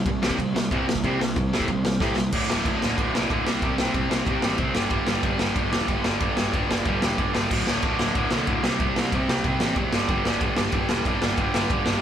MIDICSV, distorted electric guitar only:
0, 0, Header, 1, 2, 480
1, 0, Start_track
1, 0, Tempo, 323625
1, 1535, Time_signature, 4, 2, 24, 8
1, 17822, End_track
2, 0, Start_track
2, 0, Title_t, "Distorted electric guitar"
2, 0, Program_c, 0, 30
2, 98, Note_on_c, 0, 48, 85
2, 100, Note_on_c, 0, 55, 95
2, 307, Note_off_c, 0, 48, 0
2, 313, Note_off_c, 0, 55, 0
2, 325, Note_on_c, 0, 48, 99
2, 330, Note_on_c, 0, 55, 107
2, 336, Note_on_c, 0, 60, 105
2, 555, Note_off_c, 0, 48, 0
2, 558, Note_off_c, 0, 55, 0
2, 561, Note_off_c, 0, 60, 0
2, 579, Note_on_c, 0, 55, 91
2, 585, Note_on_c, 0, 48, 81
2, 793, Note_off_c, 0, 55, 0
2, 796, Note_off_c, 0, 48, 0
2, 816, Note_on_c, 0, 48, 73
2, 822, Note_on_c, 0, 55, 80
2, 1031, Note_off_c, 0, 48, 0
2, 1034, Note_off_c, 0, 55, 0
2, 1054, Note_on_c, 0, 48, 92
2, 1056, Note_on_c, 0, 55, 100
2, 1062, Note_on_c, 0, 60, 98
2, 1280, Note_off_c, 0, 48, 0
2, 1281, Note_off_c, 0, 55, 0
2, 1284, Note_off_c, 0, 60, 0
2, 1298, Note_on_c, 0, 48, 69
2, 1306, Note_on_c, 0, 55, 68
2, 1513, Note_off_c, 0, 48, 0
2, 1516, Note_off_c, 0, 55, 0
2, 1542, Note_on_c, 0, 48, 99
2, 1549, Note_on_c, 0, 55, 100
2, 1554, Note_on_c, 0, 60, 112
2, 1765, Note_off_c, 0, 48, 0
2, 1768, Note_off_c, 0, 55, 0
2, 1771, Note_off_c, 0, 60, 0
2, 1780, Note_on_c, 0, 48, 70
2, 1788, Note_on_c, 0, 55, 78
2, 1994, Note_off_c, 0, 48, 0
2, 1998, Note_off_c, 0, 55, 0
2, 2013, Note_on_c, 0, 48, 86
2, 2023, Note_on_c, 0, 55, 87
2, 2231, Note_off_c, 0, 48, 0
2, 2236, Note_off_c, 0, 55, 0
2, 2272, Note_on_c, 0, 48, 90
2, 2279, Note_on_c, 0, 60, 106
2, 2283, Note_on_c, 0, 55, 93
2, 2490, Note_off_c, 0, 48, 0
2, 2493, Note_off_c, 0, 60, 0
2, 2496, Note_off_c, 0, 55, 0
2, 2518, Note_on_c, 0, 55, 88
2, 2520, Note_on_c, 0, 48, 74
2, 2723, Note_off_c, 0, 55, 0
2, 2724, Note_off_c, 0, 48, 0
2, 2742, Note_on_c, 0, 48, 77
2, 2751, Note_on_c, 0, 55, 78
2, 2956, Note_off_c, 0, 48, 0
2, 2960, Note_off_c, 0, 55, 0
2, 2980, Note_on_c, 0, 48, 90
2, 2980, Note_on_c, 0, 55, 97
2, 2982, Note_on_c, 0, 60, 106
2, 3198, Note_off_c, 0, 48, 0
2, 3204, Note_off_c, 0, 55, 0
2, 3206, Note_off_c, 0, 60, 0
2, 3215, Note_on_c, 0, 48, 70
2, 3224, Note_on_c, 0, 55, 77
2, 3433, Note_off_c, 0, 48, 0
2, 3437, Note_off_c, 0, 55, 0
2, 3460, Note_on_c, 0, 38, 93
2, 3466, Note_on_c, 0, 45, 97
2, 3468, Note_on_c, 0, 50, 108
2, 3690, Note_off_c, 0, 50, 0
2, 3695, Note_off_c, 0, 45, 0
2, 3701, Note_off_c, 0, 38, 0
2, 3708, Note_on_c, 0, 50, 88
2, 3713, Note_on_c, 0, 45, 79
2, 3719, Note_on_c, 0, 38, 74
2, 3932, Note_off_c, 0, 38, 0
2, 3944, Note_off_c, 0, 45, 0
2, 3950, Note_off_c, 0, 50, 0
2, 3950, Note_on_c, 0, 38, 92
2, 3961, Note_on_c, 0, 45, 101
2, 3968, Note_on_c, 0, 50, 106
2, 4178, Note_off_c, 0, 50, 0
2, 4182, Note_off_c, 0, 45, 0
2, 4193, Note_off_c, 0, 38, 0
2, 4196, Note_on_c, 0, 50, 94
2, 4200, Note_on_c, 0, 45, 83
2, 4211, Note_on_c, 0, 38, 76
2, 4408, Note_off_c, 0, 38, 0
2, 4411, Note_off_c, 0, 45, 0
2, 4414, Note_off_c, 0, 50, 0
2, 4426, Note_on_c, 0, 38, 87
2, 4429, Note_on_c, 0, 45, 91
2, 4432, Note_on_c, 0, 50, 88
2, 4648, Note_off_c, 0, 50, 0
2, 4659, Note_off_c, 0, 38, 0
2, 4661, Note_off_c, 0, 45, 0
2, 4666, Note_on_c, 0, 50, 103
2, 4677, Note_on_c, 0, 38, 86
2, 4678, Note_on_c, 0, 45, 93
2, 4879, Note_off_c, 0, 38, 0
2, 4889, Note_off_c, 0, 45, 0
2, 4894, Note_off_c, 0, 50, 0
2, 4897, Note_on_c, 0, 38, 85
2, 4907, Note_on_c, 0, 45, 88
2, 4911, Note_on_c, 0, 50, 98
2, 5124, Note_off_c, 0, 38, 0
2, 5127, Note_off_c, 0, 45, 0
2, 5131, Note_off_c, 0, 50, 0
2, 5133, Note_on_c, 0, 55, 96
2, 5134, Note_on_c, 0, 48, 87
2, 5146, Note_on_c, 0, 60, 93
2, 5364, Note_off_c, 0, 60, 0
2, 5370, Note_off_c, 0, 48, 0
2, 5377, Note_off_c, 0, 55, 0
2, 5382, Note_on_c, 0, 60, 102
2, 5383, Note_on_c, 0, 55, 99
2, 5388, Note_on_c, 0, 48, 90
2, 5614, Note_off_c, 0, 48, 0
2, 5623, Note_off_c, 0, 60, 0
2, 5632, Note_on_c, 0, 48, 77
2, 5633, Note_off_c, 0, 55, 0
2, 5639, Note_on_c, 0, 55, 83
2, 5640, Note_on_c, 0, 60, 86
2, 5823, Note_off_c, 0, 60, 0
2, 5835, Note_off_c, 0, 48, 0
2, 5840, Note_on_c, 0, 60, 110
2, 5843, Note_off_c, 0, 55, 0
2, 5849, Note_on_c, 0, 55, 100
2, 5853, Note_on_c, 0, 48, 84
2, 6060, Note_off_c, 0, 48, 0
2, 6066, Note_off_c, 0, 60, 0
2, 6075, Note_off_c, 0, 55, 0
2, 6078, Note_on_c, 0, 48, 91
2, 6081, Note_on_c, 0, 55, 93
2, 6084, Note_on_c, 0, 60, 103
2, 6315, Note_off_c, 0, 60, 0
2, 6332, Note_on_c, 0, 60, 91
2, 6333, Note_off_c, 0, 48, 0
2, 6340, Note_off_c, 0, 55, 0
2, 6346, Note_on_c, 0, 55, 81
2, 6351, Note_on_c, 0, 48, 80
2, 6558, Note_off_c, 0, 48, 0
2, 6574, Note_off_c, 0, 60, 0
2, 6576, Note_off_c, 0, 55, 0
2, 6576, Note_on_c, 0, 48, 93
2, 6582, Note_on_c, 0, 55, 107
2, 6592, Note_on_c, 0, 60, 105
2, 6783, Note_off_c, 0, 60, 0
2, 6797, Note_off_c, 0, 48, 0
2, 6799, Note_off_c, 0, 55, 0
2, 6800, Note_on_c, 0, 60, 98
2, 6805, Note_on_c, 0, 55, 78
2, 6815, Note_on_c, 0, 48, 78
2, 7037, Note_off_c, 0, 60, 0
2, 7044, Note_off_c, 0, 48, 0
2, 7050, Note_off_c, 0, 55, 0
2, 7053, Note_on_c, 0, 43, 92
2, 7056, Note_on_c, 0, 50, 91
2, 7057, Note_on_c, 0, 55, 90
2, 7261, Note_off_c, 0, 50, 0
2, 7265, Note_off_c, 0, 55, 0
2, 7270, Note_on_c, 0, 55, 112
2, 7279, Note_on_c, 0, 50, 102
2, 7283, Note_off_c, 0, 43, 0
2, 7289, Note_on_c, 0, 43, 92
2, 7502, Note_off_c, 0, 50, 0
2, 7513, Note_off_c, 0, 43, 0
2, 7519, Note_on_c, 0, 43, 86
2, 7519, Note_on_c, 0, 50, 85
2, 7522, Note_off_c, 0, 55, 0
2, 7528, Note_on_c, 0, 55, 97
2, 7748, Note_off_c, 0, 50, 0
2, 7752, Note_off_c, 0, 55, 0
2, 7758, Note_on_c, 0, 55, 114
2, 7766, Note_on_c, 0, 50, 100
2, 7768, Note_off_c, 0, 43, 0
2, 7773, Note_on_c, 0, 43, 92
2, 7991, Note_off_c, 0, 50, 0
2, 8002, Note_off_c, 0, 43, 0
2, 8007, Note_on_c, 0, 43, 81
2, 8009, Note_on_c, 0, 50, 96
2, 8013, Note_off_c, 0, 55, 0
2, 8019, Note_on_c, 0, 55, 100
2, 8227, Note_off_c, 0, 55, 0
2, 8236, Note_off_c, 0, 50, 0
2, 8242, Note_off_c, 0, 43, 0
2, 8244, Note_on_c, 0, 55, 91
2, 8254, Note_on_c, 0, 50, 87
2, 8259, Note_on_c, 0, 43, 76
2, 8465, Note_off_c, 0, 43, 0
2, 8472, Note_off_c, 0, 55, 0
2, 8479, Note_off_c, 0, 50, 0
2, 8483, Note_on_c, 0, 43, 101
2, 8490, Note_on_c, 0, 55, 102
2, 8497, Note_on_c, 0, 50, 97
2, 8704, Note_off_c, 0, 55, 0
2, 8713, Note_off_c, 0, 43, 0
2, 8716, Note_off_c, 0, 50, 0
2, 8722, Note_on_c, 0, 55, 91
2, 8730, Note_on_c, 0, 43, 84
2, 8734, Note_on_c, 0, 50, 86
2, 8942, Note_off_c, 0, 43, 0
2, 8954, Note_off_c, 0, 50, 0
2, 8954, Note_off_c, 0, 55, 0
2, 8960, Note_on_c, 0, 43, 73
2, 8972, Note_on_c, 0, 50, 80
2, 8972, Note_on_c, 0, 55, 91
2, 9188, Note_off_c, 0, 55, 0
2, 9198, Note_off_c, 0, 50, 0
2, 9201, Note_off_c, 0, 43, 0
2, 9206, Note_on_c, 0, 55, 109
2, 9216, Note_on_c, 0, 50, 91
2, 9219, Note_on_c, 0, 43, 89
2, 9419, Note_off_c, 0, 43, 0
2, 9437, Note_off_c, 0, 50, 0
2, 9437, Note_on_c, 0, 43, 89
2, 9444, Note_off_c, 0, 55, 0
2, 9454, Note_on_c, 0, 50, 82
2, 9462, Note_on_c, 0, 55, 91
2, 9663, Note_off_c, 0, 55, 0
2, 9670, Note_off_c, 0, 50, 0
2, 9675, Note_off_c, 0, 43, 0
2, 9680, Note_on_c, 0, 55, 115
2, 9688, Note_on_c, 0, 50, 99
2, 9693, Note_on_c, 0, 43, 85
2, 9911, Note_off_c, 0, 43, 0
2, 9920, Note_off_c, 0, 50, 0
2, 9922, Note_off_c, 0, 55, 0
2, 9929, Note_on_c, 0, 43, 83
2, 9937, Note_on_c, 0, 50, 91
2, 9940, Note_on_c, 0, 55, 89
2, 10162, Note_off_c, 0, 55, 0
2, 10173, Note_off_c, 0, 50, 0
2, 10175, Note_off_c, 0, 43, 0
2, 10179, Note_on_c, 0, 55, 91
2, 10190, Note_on_c, 0, 50, 86
2, 10193, Note_on_c, 0, 43, 79
2, 10405, Note_off_c, 0, 43, 0
2, 10420, Note_off_c, 0, 50, 0
2, 10423, Note_on_c, 0, 43, 94
2, 10424, Note_off_c, 0, 55, 0
2, 10437, Note_on_c, 0, 50, 97
2, 10442, Note_on_c, 0, 55, 105
2, 10655, Note_off_c, 0, 55, 0
2, 10662, Note_off_c, 0, 50, 0
2, 10672, Note_on_c, 0, 55, 94
2, 10673, Note_off_c, 0, 43, 0
2, 10680, Note_on_c, 0, 50, 84
2, 10691, Note_on_c, 0, 43, 74
2, 10878, Note_off_c, 0, 43, 0
2, 10880, Note_off_c, 0, 50, 0
2, 10891, Note_off_c, 0, 55, 0
2, 10896, Note_on_c, 0, 43, 78
2, 10898, Note_on_c, 0, 50, 83
2, 10908, Note_on_c, 0, 55, 79
2, 11125, Note_off_c, 0, 43, 0
2, 11127, Note_off_c, 0, 50, 0
2, 11132, Note_off_c, 0, 55, 0
2, 11145, Note_on_c, 0, 38, 89
2, 11151, Note_on_c, 0, 45, 103
2, 11161, Note_on_c, 0, 50, 107
2, 11375, Note_off_c, 0, 50, 0
2, 11380, Note_off_c, 0, 45, 0
2, 11387, Note_off_c, 0, 38, 0
2, 11393, Note_on_c, 0, 50, 84
2, 11398, Note_on_c, 0, 45, 89
2, 11405, Note_on_c, 0, 38, 72
2, 11609, Note_off_c, 0, 38, 0
2, 11619, Note_off_c, 0, 45, 0
2, 11627, Note_on_c, 0, 38, 95
2, 11628, Note_off_c, 0, 50, 0
2, 11637, Note_on_c, 0, 45, 105
2, 11645, Note_on_c, 0, 50, 103
2, 11844, Note_off_c, 0, 50, 0
2, 11851, Note_off_c, 0, 45, 0
2, 11858, Note_off_c, 0, 38, 0
2, 11861, Note_on_c, 0, 50, 87
2, 11869, Note_on_c, 0, 45, 83
2, 11876, Note_on_c, 0, 38, 73
2, 12078, Note_off_c, 0, 38, 0
2, 12087, Note_off_c, 0, 45, 0
2, 12092, Note_off_c, 0, 50, 0
2, 12095, Note_on_c, 0, 38, 80
2, 12104, Note_on_c, 0, 45, 92
2, 12110, Note_on_c, 0, 50, 96
2, 12320, Note_off_c, 0, 50, 0
2, 12333, Note_off_c, 0, 45, 0
2, 12336, Note_off_c, 0, 38, 0
2, 12338, Note_on_c, 0, 50, 116
2, 12351, Note_on_c, 0, 45, 96
2, 12354, Note_on_c, 0, 38, 86
2, 12545, Note_off_c, 0, 38, 0
2, 12560, Note_off_c, 0, 45, 0
2, 12562, Note_off_c, 0, 50, 0
2, 12563, Note_on_c, 0, 38, 87
2, 12578, Note_on_c, 0, 45, 81
2, 12580, Note_on_c, 0, 50, 88
2, 12798, Note_off_c, 0, 38, 0
2, 12805, Note_off_c, 0, 45, 0
2, 12806, Note_off_c, 0, 50, 0
2, 12818, Note_on_c, 0, 48, 98
2, 12819, Note_on_c, 0, 55, 89
2, 12826, Note_on_c, 0, 60, 93
2, 13036, Note_off_c, 0, 60, 0
2, 13047, Note_off_c, 0, 48, 0
2, 13049, Note_off_c, 0, 55, 0
2, 13053, Note_on_c, 0, 60, 116
2, 13055, Note_on_c, 0, 55, 105
2, 13064, Note_on_c, 0, 48, 86
2, 13284, Note_off_c, 0, 48, 0
2, 13296, Note_off_c, 0, 60, 0
2, 13301, Note_on_c, 0, 48, 86
2, 13307, Note_off_c, 0, 55, 0
2, 13313, Note_on_c, 0, 55, 91
2, 13314, Note_on_c, 0, 60, 95
2, 13525, Note_off_c, 0, 60, 0
2, 13531, Note_off_c, 0, 48, 0
2, 13543, Note_on_c, 0, 60, 108
2, 13544, Note_off_c, 0, 55, 0
2, 13549, Note_on_c, 0, 48, 98
2, 13550, Note_on_c, 0, 55, 94
2, 13766, Note_off_c, 0, 48, 0
2, 13768, Note_off_c, 0, 60, 0
2, 13777, Note_off_c, 0, 55, 0
2, 13783, Note_on_c, 0, 55, 98
2, 13784, Note_on_c, 0, 48, 93
2, 13786, Note_on_c, 0, 60, 92
2, 14005, Note_off_c, 0, 60, 0
2, 14016, Note_off_c, 0, 48, 0
2, 14022, Note_on_c, 0, 60, 88
2, 14030, Note_off_c, 0, 55, 0
2, 14034, Note_on_c, 0, 48, 82
2, 14036, Note_on_c, 0, 55, 90
2, 14246, Note_off_c, 0, 48, 0
2, 14255, Note_off_c, 0, 55, 0
2, 14258, Note_off_c, 0, 60, 0
2, 14261, Note_on_c, 0, 55, 94
2, 14264, Note_on_c, 0, 48, 102
2, 14276, Note_on_c, 0, 60, 111
2, 14471, Note_off_c, 0, 60, 0
2, 14484, Note_off_c, 0, 48, 0
2, 14488, Note_off_c, 0, 55, 0
2, 14489, Note_on_c, 0, 60, 89
2, 14494, Note_on_c, 0, 55, 93
2, 14501, Note_on_c, 0, 48, 81
2, 14719, Note_off_c, 0, 60, 0
2, 14725, Note_off_c, 0, 48, 0
2, 14735, Note_off_c, 0, 55, 0
2, 14739, Note_on_c, 0, 43, 92
2, 14740, Note_on_c, 0, 50, 89
2, 14751, Note_on_c, 0, 55, 97
2, 14964, Note_off_c, 0, 50, 0
2, 14967, Note_off_c, 0, 55, 0
2, 14973, Note_on_c, 0, 55, 107
2, 14980, Note_off_c, 0, 43, 0
2, 14982, Note_on_c, 0, 50, 99
2, 14986, Note_on_c, 0, 43, 87
2, 15199, Note_off_c, 0, 50, 0
2, 15204, Note_off_c, 0, 43, 0
2, 15210, Note_on_c, 0, 43, 90
2, 15216, Note_off_c, 0, 55, 0
2, 15217, Note_on_c, 0, 50, 89
2, 15222, Note_on_c, 0, 55, 94
2, 15434, Note_off_c, 0, 50, 0
2, 15435, Note_off_c, 0, 55, 0
2, 15441, Note_on_c, 0, 55, 108
2, 15447, Note_off_c, 0, 43, 0
2, 15452, Note_on_c, 0, 50, 112
2, 15453, Note_on_c, 0, 43, 93
2, 15661, Note_off_c, 0, 50, 0
2, 15662, Note_off_c, 0, 43, 0
2, 15668, Note_on_c, 0, 43, 85
2, 15677, Note_off_c, 0, 55, 0
2, 15679, Note_on_c, 0, 50, 94
2, 15683, Note_on_c, 0, 55, 99
2, 15911, Note_off_c, 0, 50, 0
2, 15920, Note_off_c, 0, 55, 0
2, 15926, Note_on_c, 0, 55, 90
2, 15928, Note_on_c, 0, 50, 88
2, 15933, Note_off_c, 0, 43, 0
2, 15938, Note_on_c, 0, 43, 81
2, 16140, Note_off_c, 0, 50, 0
2, 16151, Note_off_c, 0, 43, 0
2, 16157, Note_on_c, 0, 43, 101
2, 16158, Note_on_c, 0, 50, 96
2, 16166, Note_off_c, 0, 55, 0
2, 16172, Note_on_c, 0, 55, 108
2, 16390, Note_off_c, 0, 50, 0
2, 16400, Note_off_c, 0, 55, 0
2, 16406, Note_on_c, 0, 55, 100
2, 16407, Note_on_c, 0, 50, 95
2, 16413, Note_off_c, 0, 43, 0
2, 16419, Note_on_c, 0, 43, 87
2, 16640, Note_off_c, 0, 50, 0
2, 16647, Note_off_c, 0, 43, 0
2, 16649, Note_off_c, 0, 55, 0
2, 16653, Note_on_c, 0, 43, 73
2, 16655, Note_on_c, 0, 55, 85
2, 16658, Note_on_c, 0, 50, 86
2, 16857, Note_off_c, 0, 55, 0
2, 16870, Note_off_c, 0, 50, 0
2, 16875, Note_off_c, 0, 43, 0
2, 16875, Note_on_c, 0, 55, 123
2, 16888, Note_on_c, 0, 50, 105
2, 16893, Note_on_c, 0, 43, 96
2, 17110, Note_off_c, 0, 43, 0
2, 17120, Note_off_c, 0, 55, 0
2, 17123, Note_off_c, 0, 50, 0
2, 17128, Note_on_c, 0, 43, 92
2, 17137, Note_on_c, 0, 55, 99
2, 17141, Note_on_c, 0, 50, 91
2, 17350, Note_off_c, 0, 55, 0
2, 17352, Note_off_c, 0, 50, 0
2, 17359, Note_off_c, 0, 43, 0
2, 17367, Note_on_c, 0, 55, 124
2, 17370, Note_on_c, 0, 50, 111
2, 17377, Note_on_c, 0, 43, 97
2, 17588, Note_off_c, 0, 43, 0
2, 17590, Note_off_c, 0, 50, 0
2, 17594, Note_off_c, 0, 55, 0
2, 17605, Note_on_c, 0, 43, 93
2, 17607, Note_on_c, 0, 50, 91
2, 17612, Note_on_c, 0, 55, 102
2, 17812, Note_off_c, 0, 55, 0
2, 17822, Note_off_c, 0, 43, 0
2, 17822, Note_off_c, 0, 50, 0
2, 17822, End_track
0, 0, End_of_file